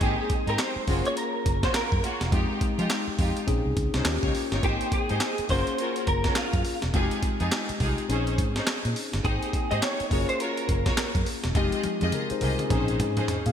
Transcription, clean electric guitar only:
0.02 0.50 G#4 medium
0.49 0.59 A#4 medium
0.59 1.06 C5 medium
1.07 1.17 C#5 medium
1.17 1.60 A#4 medium
1.64 1.75 C5 medium
1.75 2.02 A#4 medium
4.64 4.93 G4 medium
4.93 5.52 G#4 loud
5.50 6.07 C5 loud
6.08 6.37 A#4 medium
6.37 6.80 F4 medium
9.25 9.72 G#4 medium
9.71 9.81 D#5 loud
9.82 10.25 C#5 medium
10.29 10.41 C5 medium
10.41 11.27 A#4 medium

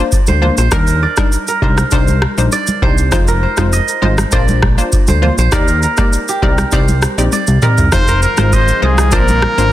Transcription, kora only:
0.00 0.63 D5 medium
0.28 0.58 C5 medium
0.58 1.77 C5 medium
0.72 1.48 A#4 medium
1.03 2.13 D5 medium
1.48 1.62 A#4 medium
1.63 2.90 A#4 medium
1.93 2.82 C5 medium
2.53 3.63 D5 medium
2.82 3.42 C5 medium
3.28 4.55 A#4 medium
3.43 4.62 C5 medium
3.73 4.39 D#5 medium
4.33 5.44 D5 medium
5.08 5.38 C5 medium
5.39 6.57 C5 medium
5.53 5.83 A#4 medium
5.83 6.42 A#4 medium
6.29 7.70 G4 medium
6.43 7.62 A#4 medium
6.73 7.92 C5 medium
7.33 8.43 D5 medium
7.63 8.08 A#4 medium
8.08 9.36 A#4 medium
8.23 9.41 C5 medium
8.53 9.19 D#5 medium
9.13 9.72 D5 medium

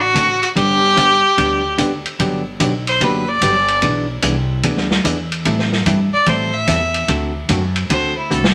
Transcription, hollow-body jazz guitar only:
0.14 0.27 D3 medium
0.14 0.27 A3 medium
0.14 0.27 C4 medium
0.14 0.28 F#4 medium
0.14 0.28 A4 medium
0.56 0.79 D3 medium
0.56 0.79 G3 medium
0.56 0.79 B3 medium
0.56 0.79 D4 medium
0.56 0.79 G4 medium
0.96 1.09 D3 medium
0.96 1.09 G3 medium
0.96 1.09 B3 medium
0.96 1.09 D4 medium
0.96 1.09 G4 medium
1.38 1.60 D3 medium
1.38 1.60 G3 medium
1.38 1.61 B3 medium
1.38 1.61 D4 medium
1.38 1.61 G4 medium
1.78 1.90 D3 medium
1.78 1.90 G3 medium
1.78 1.90 B3 medium
1.78 1.91 D4 medium
1.78 1.91 G4 medium
2.19 2.42 D3 medium
2.19 2.42 F#3 medium
2.19 2.42 B3 medium
2.19 2.42 D4 medium
2.19 2.43 G4 medium
2.60 2.72 D3 medium
2.60 2.72 F#3 medium
2.60 2.72 B3 medium
2.60 2.72 D4 medium
2.60 2.72 G4 medium
3.01 3.24 D3 medium
3.01 3.24 F#3 medium
3.01 3.24 B3 medium
3.01 3.24 D4 medium
3.01 3.24 G4 medium
3.42 3.54 D3 medium
3.42 3.54 F#3 medium
3.42 3.54 B3 medium
3.42 3.54 D4 medium
3.42 3.54 G4 medium
3.82 4.05 E3 medium
3.82 4.05 B3 medium
3.82 4.05 D4 medium
3.82 4.05 G#4 medium
4.22 4.35 E3 medium
4.22 4.35 B3 medium
4.22 4.35 D4 medium
4.22 4.35 G#4 loud
4.64 4.86 E3 medium
4.64 4.87 B3 medium
4.64 4.87 D4 medium
4.64 4.87 G#4 medium
5.04 5.16 E3 medium
5.04 5.17 B3 medium
5.04 5.17 D4 medium
5.04 5.17 G#4 medium
5.45 5.68 E3 medium
5.45 5.68 G3 medium
5.45 5.68 C4 medium
5.45 5.68 E4 medium
5.45 5.69 A4 medium
5.86 5.98 E3 medium
5.86 5.98 G3 medium
5.86 5.98 C4 medium
5.86 5.99 E4 medium
5.86 5.99 A4 medium
6.27 6.50 E3 medium
6.27 6.50 G3 medium
6.27 6.50 C4 medium
6.27 6.50 E4 medium
6.27 6.50 A4 medium
6.67 6.79 E3 medium
6.67 6.79 G3 medium
6.67 6.80 C4 medium
6.67 6.80 E4 medium
6.67 6.80 A4 medium
7.08 7.31 D3 medium
7.08 7.31 A3 medium
7.08 7.31 C4 medium
7.08 7.31 F#4 medium
7.08 7.31 A4 medium
7.49 7.61 D3 medium
7.49 7.61 A3 medium
7.49 7.61 C4 medium
7.49 7.61 F#4 medium
7.49 7.62 A4 medium
7.90 8.12 D3 medium
7.90 8.13 A3 medium
7.90 8.13 C4 medium
7.90 8.13 F#4 medium
7.90 8.13 A4 medium
8.30 8.42 D3 medium
8.30 8.43 A3 medium
8.30 8.43 C4 medium
8.30 8.43 F#4 medium
8.30 8.43 A4 medium

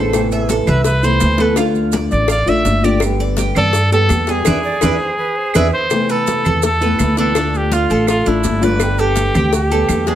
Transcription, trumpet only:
0.68 0.84 B4 loud
0.84 1.06 B4 loud
1.04 1.43 C5 loud
1.42 1.59 B4 loud
2.12 2.28 D5 loud
2.31 2.50 D5 loud
2.49 2.86 E5 loud
2.84 3.02 D5 medium
3.57 3.90 A4 loud
3.93 4.32 A4 loud
4.31 5.73 G#4 loud
5.73 6.12 C5 loud
6.11 6.64 A4 loud
6.65 7.15 A4 loud
7.19 7.58 A4 loud
7.57 7.75 G4 medium
7.73 8.08 F4 medium
8.08 8.29 F4 loud
8.28 8.65 E4 medium
8.64 9.01 B4 loud
9.00 9.53 G4 loud
9.55 10.09 G4 loud
10.08 10.15 G#4 loud

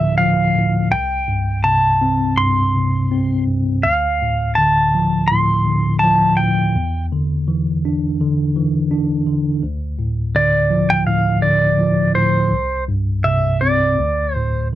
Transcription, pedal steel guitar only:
0.00 0.17 E5 medium
0.18 0.91 F5 medium
0.92 1.66 G5 medium
1.64 2.39 A5 medium
2.38 3.43 C6 medium
3.83 4.59 F5 medium
4.55 5.31 A5 medium
5.28 5.99 C6 medium
5.99 6.38 A5 medium
6.37 7.06 G5 medium
10.36 10.91 D5 medium
10.90 11.06 G5 loud
11.07 11.43 F5 medium
11.42 12.15 D5 medium
12.15 12.84 C5 medium
13.24 13.62 E5 medium
13.61 14.35 D5 medium
14.35 14.67 C5 medium

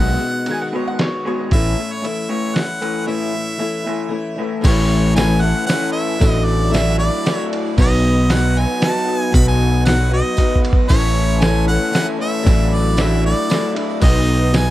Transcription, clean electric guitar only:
0.00 0.18 B2 medium
0.00 0.18 D#3 medium
0.00 0.19 G#3 loud
0.20 0.44 B2 medium
0.20 0.44 D#3 medium
0.47 0.70 B2 medium
0.47 0.70 D#3 medium
0.73 0.97 B2 medium
0.73 0.97 D#3 medium
0.73 0.98 G#3 medium
0.99 1.22 B2 medium
0.99 1.23 D#3 medium
1.25 1.50 B2 medium
1.25 1.50 D#3 loud
1.25 1.50 G#3 medium
1.52 1.76 A2 medium
1.52 1.76 E3 medium
1.52 1.77 A3 loud
1.78 2.01 A2 medium
2.02 2.26 A2 medium
2.02 2.27 E3 medium
2.29 2.54 A2 medium
2.29 2.54 E3 medium
2.29 2.55 A3 medium
2.56 2.80 A2 medium
2.56 2.80 E3 medium
2.81 3.06 A2 medium
2.81 3.06 E3 medium
2.81 3.07 A3 medium
3.07 3.32 A2 medium
3.07 3.32 E3 medium
3.07 3.33 A3 medium
3.34 3.58 A2 medium
3.34 3.58 E3 medium
3.59 3.84 A2 medium
3.59 3.84 E3 medium
3.87 4.11 A2 medium
3.87 4.12 E3 medium
3.87 4.12 A3 medium
4.12 4.36 A2 medium
4.12 4.36 E3 medium
4.38 4.62 A2 medium
4.38 4.63 E3 medium
4.38 4.64 A3 medium
4.63 5.69 A2 loud
4.63 5.17 E3 medium
4.63 5.18 A3 loud
4.63 5.18 C#4 loud
4.63 5.19 E4 loud
5.17 5.69 E3 medium
5.17 5.44 A3 medium
5.17 5.43 C#4 medium
5.17 5.42 E4 medium
5.43 5.70 A3 medium
5.43 5.70 C#4 medium
5.43 5.71 E4 medium
5.69 6.20 A2 medium
5.69 6.20 E3 medium
5.69 6.21 A3 loud
5.69 6.21 C#4 loud
5.69 6.22 E4 loud
6.21 7.00 A2 medium
6.21 6.72 F#3 loud
6.21 6.73 A3 loud
6.21 6.73 D4 loud
6.21 6.74 E4 loud
6.72 7.25 F#3 medium
6.72 7.00 A3 medium
6.72 6.99 D4 medium
6.72 6.98 E4 medium
6.99 7.25 A3 medium
6.99 7.26 D4 medium
6.99 7.27 E4 medium
7.25 7.76 A2 loud
7.25 7.78 F#3 loud
7.25 7.77 A3 loud
7.25 7.77 D4 medium
7.25 7.77 E4 loud
7.77 8.82 B2 loud
7.77 8.29 F#3 loud
7.77 8.30 B3 loud
7.77 8.31 D#4 loud
7.77 8.32 F#4 loud
8.29 8.82 F#3 medium
8.29 8.58 B3 medium
8.29 8.57 D#4 medium
8.29 8.55 F#4 medium
8.56 8.82 B3 medium
8.56 8.83 D#4 medium
8.56 8.84 F#4 medium
8.82 9.33 B2 medium
8.82 9.33 F#3 loud
8.82 9.34 B3 loud
8.82 9.35 D#4 medium
8.82 9.35 F#4 loud
9.34 10.12 B2 loud
9.34 9.85 F#3 loud
9.34 9.86 B3 medium
9.34 9.86 D#4 loud
9.34 9.88 F#4 loud
9.86 10.37 F#3 medium
9.86 10.13 B3 medium
9.86 10.12 D#4 medium
9.86 10.10 F#4 medium
10.11 10.37 B3 medium
10.11 10.38 D#4 medium
10.11 10.39 F#4 medium
10.37 10.88 B2 medium
10.37 10.89 F#3 medium
10.37 10.89 B3 loud
10.37 10.89 D#4 loud
10.37 10.90 F#4 medium
10.89 11.94 A2 medium
10.89 11.41 E3 loud
10.89 11.42 A3 loud
10.89 11.41 C#4 loud
10.89 11.44 E4 loud
11.41 11.94 E3 medium
11.41 11.69 A3 medium
11.41 11.68 C#4 medium
11.41 11.67 E4 medium
11.68 11.95 A3 medium
11.68 11.96 C#4 medium
11.68 11.96 E4 medium
11.94 12.45 A2 medium
11.94 12.45 E3 medium
11.94 12.46 A3 loud
11.94 12.46 C#4 loud
11.94 12.46 E4 medium
12.46 13.24 A2 loud
12.46 12.99 F#3 loud
12.46 12.99 A3 loud
12.46 13.00 D4 loud
12.46 13.01 E4 loud
13.00 13.50 F#3 medium
13.00 13.26 A3 medium
13.00 13.25 D4 loud
13.00 13.23 E4 medium
13.25 13.50 A3 medium
13.25 13.51 D4 medium
13.25 13.52 E4 medium
13.50 14.00 A2 loud
13.50 14.02 F#3 medium
13.50 14.01 A3 loud
13.50 14.02 D4 medium
13.50 14.02 E4 loud
14.02 14.70 B2 loud
14.02 14.52 F#3 loud
14.02 14.53 B3 loud
14.02 14.54 D#4 loud
14.02 14.55 F#4 loud
14.53 14.70 F#3 medium
14.53 14.70 B3 medium
14.53 14.70 D#4 medium
14.53 14.70 F#4 medium

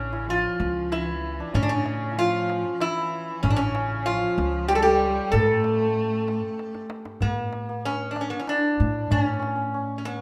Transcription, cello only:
0.00 0.28 C#3 medium
0.27 0.91 F3 medium
0.90 1.55 E3 medium
1.53 1.67 C#3 medium
1.68 2.19 C#3 medium
2.17 2.74 F3 medium
2.74 2.82 F3 medium
2.81 3.45 E3 medium
3.44 3.57 C#3 medium
3.57 4.08 C#3 medium
4.07 4.73 F3 medium
4.71 4.84 G3 medium
4.85 5.36 G3 medium
5.34 6.91 A3 loud

